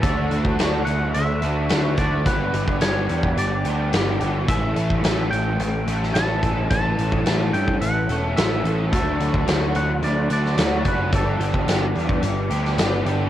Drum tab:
HH |x-x-x-x-x-x-x-x-|x-x-x-x-x-x-x-x-|x-x-x-x-x-x-x-x-|x-x-x-x-x-x-x-x-|
SD |----o-------o---|----o-------o---|----o------oo---|----o-------o---|
BD |o--o----------o-|o--o---o--------|o--o----------o-|o--o---o--------|

HH |x-x-x-x-x-x-x-x-|x-x-x-x-x-x-x-x-|
SD |----o------oo---|----o------oo---|
BD |o--o----------o-|o--o---o--------|